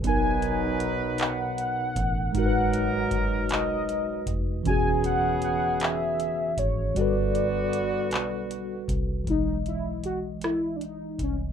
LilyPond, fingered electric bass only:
\new Staff \with { instrumentName = "Fingered electric bass" } { \clef bass \time 6/8 \key e \lydian \tempo 4. = 52 b,,2~ b,,8 a,,8 | gis,,4. b,,4 eis,,8 | e,,2~ e,,8 gis,,8 | g,,4. b,,4 c,8 |
b,,2~ b,,8 c,8 | }